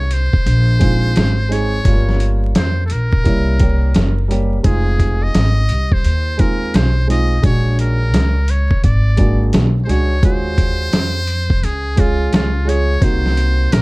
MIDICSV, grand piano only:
0, 0, Header, 1, 2, 480
1, 0, Start_track
1, 0, Key_signature, -5, "minor"
1, 0, Tempo, 697674
1, 1277, Time_signature, 4, 2, 24, 8
1, 9507, End_track
2, 0, Start_track
2, 0, Title_t, "Grand piano"
2, 0, Program_c, 0, 0
2, 545, Note_on_c, 0, 56, 70
2, 552, Note_on_c, 0, 60, 65
2, 559, Note_on_c, 0, 63, 65
2, 568, Note_on_c, 0, 65, 75
2, 889, Note_off_c, 0, 56, 0
2, 892, Note_off_c, 0, 60, 0
2, 896, Note_off_c, 0, 63, 0
2, 900, Note_off_c, 0, 65, 0
2, 1024, Note_on_c, 0, 56, 70
2, 1032, Note_on_c, 0, 60, 57
2, 1039, Note_on_c, 0, 63, 61
2, 1049, Note_on_c, 0, 68, 73
2, 1211, Note_off_c, 0, 56, 0
2, 1215, Note_off_c, 0, 60, 0
2, 1218, Note_off_c, 0, 63, 0
2, 1223, Note_off_c, 0, 68, 0
2, 1263, Note_on_c, 0, 55, 70
2, 1272, Note_on_c, 0, 56, 54
2, 1279, Note_on_c, 0, 61, 63
2, 1286, Note_on_c, 0, 65, 82
2, 1318, Note_on_c, 0, 58, 62
2, 1331, Note_off_c, 0, 56, 0
2, 1927, Note_off_c, 0, 55, 0
2, 1935, Note_off_c, 0, 61, 0
2, 1939, Note_off_c, 0, 65, 0
2, 1955, Note_off_c, 0, 58, 0
2, 2226, Note_on_c, 0, 55, 78
2, 2232, Note_on_c, 0, 58, 69
2, 2240, Note_on_c, 0, 61, 67
2, 2247, Note_on_c, 0, 64, 78
2, 2436, Note_off_c, 0, 55, 0
2, 2439, Note_off_c, 0, 58, 0
2, 2443, Note_off_c, 0, 61, 0
2, 2447, Note_off_c, 0, 64, 0
2, 2467, Note_on_c, 0, 55, 63
2, 2474, Note_on_c, 0, 58, 62
2, 2482, Note_on_c, 0, 61, 60
2, 2490, Note_on_c, 0, 67, 72
2, 2810, Note_off_c, 0, 55, 0
2, 2813, Note_off_c, 0, 58, 0
2, 2817, Note_off_c, 0, 61, 0
2, 2821, Note_off_c, 0, 67, 0
2, 2945, Note_on_c, 0, 55, 83
2, 2951, Note_on_c, 0, 58, 67
2, 2959, Note_on_c, 0, 61, 66
2, 2967, Note_on_c, 0, 67, 88
2, 3131, Note_off_c, 0, 55, 0
2, 3134, Note_off_c, 0, 58, 0
2, 3138, Note_off_c, 0, 61, 0
2, 3142, Note_off_c, 0, 67, 0
2, 3187, Note_on_c, 0, 56, 76
2, 3193, Note_on_c, 0, 60, 64
2, 3200, Note_on_c, 0, 63, 63
2, 3210, Note_on_c, 0, 65, 77
2, 3849, Note_off_c, 0, 56, 0
2, 3852, Note_off_c, 0, 60, 0
2, 3856, Note_off_c, 0, 63, 0
2, 3861, Note_off_c, 0, 65, 0
2, 4385, Note_on_c, 0, 56, 67
2, 4390, Note_on_c, 0, 60, 65
2, 4399, Note_on_c, 0, 63, 62
2, 4406, Note_on_c, 0, 65, 72
2, 4729, Note_off_c, 0, 56, 0
2, 4731, Note_off_c, 0, 60, 0
2, 4736, Note_off_c, 0, 63, 0
2, 4739, Note_off_c, 0, 65, 0
2, 4866, Note_on_c, 0, 56, 64
2, 4873, Note_on_c, 0, 60, 63
2, 4881, Note_on_c, 0, 63, 62
2, 4890, Note_on_c, 0, 65, 74
2, 5052, Note_off_c, 0, 56, 0
2, 5055, Note_off_c, 0, 60, 0
2, 5059, Note_off_c, 0, 63, 0
2, 5064, Note_off_c, 0, 65, 0
2, 5108, Note_on_c, 0, 56, 73
2, 5114, Note_on_c, 0, 61, 65
2, 5123, Note_on_c, 0, 62, 65
2, 5132, Note_on_c, 0, 66, 74
2, 5770, Note_off_c, 0, 56, 0
2, 5773, Note_off_c, 0, 61, 0
2, 5777, Note_off_c, 0, 62, 0
2, 5781, Note_off_c, 0, 66, 0
2, 6309, Note_on_c, 0, 56, 71
2, 6316, Note_on_c, 0, 58, 63
2, 6324, Note_on_c, 0, 62, 64
2, 6332, Note_on_c, 0, 66, 73
2, 6651, Note_off_c, 0, 56, 0
2, 6654, Note_off_c, 0, 58, 0
2, 6658, Note_off_c, 0, 62, 0
2, 6662, Note_off_c, 0, 66, 0
2, 6789, Note_on_c, 0, 56, 67
2, 6796, Note_on_c, 0, 61, 58
2, 6803, Note_on_c, 0, 62, 61
2, 6813, Note_on_c, 0, 66, 81
2, 6973, Note_off_c, 0, 56, 0
2, 6977, Note_off_c, 0, 61, 0
2, 6981, Note_off_c, 0, 62, 0
2, 6985, Note_off_c, 0, 66, 0
2, 7035, Note_on_c, 0, 56, 74
2, 7039, Note_on_c, 0, 61, 70
2, 7048, Note_on_c, 0, 65, 65
2, 7055, Note_on_c, 0, 66, 79
2, 7693, Note_off_c, 0, 56, 0
2, 7695, Note_off_c, 0, 61, 0
2, 7700, Note_off_c, 0, 65, 0
2, 7703, Note_off_c, 0, 66, 0
2, 8229, Note_on_c, 0, 56, 70
2, 8236, Note_on_c, 0, 61, 66
2, 8244, Note_on_c, 0, 65, 66
2, 8250, Note_on_c, 0, 68, 75
2, 8571, Note_off_c, 0, 56, 0
2, 8574, Note_off_c, 0, 61, 0
2, 8578, Note_off_c, 0, 65, 0
2, 8581, Note_off_c, 0, 68, 0
2, 8704, Note_on_c, 0, 56, 66
2, 8712, Note_on_c, 0, 61, 60
2, 8719, Note_on_c, 0, 65, 61
2, 8725, Note_on_c, 0, 68, 77
2, 8891, Note_off_c, 0, 56, 0
2, 8895, Note_off_c, 0, 61, 0
2, 8898, Note_off_c, 0, 65, 0
2, 8901, Note_off_c, 0, 68, 0
2, 8946, Note_on_c, 0, 58, 67
2, 8954, Note_on_c, 0, 60, 69
2, 8961, Note_on_c, 0, 63, 69
2, 8969, Note_on_c, 0, 66, 82
2, 9507, Note_off_c, 0, 58, 0
2, 9507, Note_off_c, 0, 60, 0
2, 9507, Note_off_c, 0, 63, 0
2, 9507, Note_off_c, 0, 66, 0
2, 9507, End_track
0, 0, End_of_file